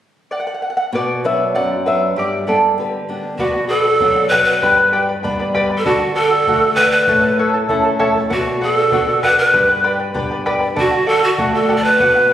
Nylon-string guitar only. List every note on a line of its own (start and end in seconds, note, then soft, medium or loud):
0.93 1.52 B2 medium
1.24 1.73 F#3 soft
1.24 1.73 B3 soft
1.24 1.74 D4 soft
1.55 2.15 F#2 soft
1.86 2.10 F#3 soft
1.86 2.11 B3 soft
1.86 2.11 D4 soft
2.16 2.76 G2 medium
2.47 2.96 G3 soft
2.47 2.97 B3 soft
2.47 2.97 D4 soft
2.78 3.37 D3 medium
3.09 3.33 G3 soft
3.09 3.33 B3 soft
3.09 3.33 D4 soft
3.40 4.59 B2 medium
4.00 4.60 F#3 soft
4.00 4.60 B3 soft
4.00 4.60 D4 soft
4.62 5.82 G2 medium
5.24 5.84 G3 soft
5.24 5.84 B3 soft
5.24 5.84 D4 soft
5.86 7.05 D3 medium
6.47 7.06 A3 soft
6.47 7.07 D4 soft
6.47 7.07 F#4 soft
7.09 8.28 A2 medium
7.69 8.29 A3 soft
7.69 8.29 C#4 soft
7.69 8.30 E4 soft
8.31 9.50 B2 medium
8.92 9.52 B3 soft
8.92 9.52 D4 soft
8.92 9.52 F#4 soft
9.54 10.73 G2 medium
10.14 10.74 B3 soft
10.14 10.75 D4 soft
10.14 10.75 G4 soft
10.76 11.96 D3 medium
11.38 11.98 A3 soft
11.38 11.98 D4 soft
11.38 11.98 F#4 soft
12.01 12.33 B2 medium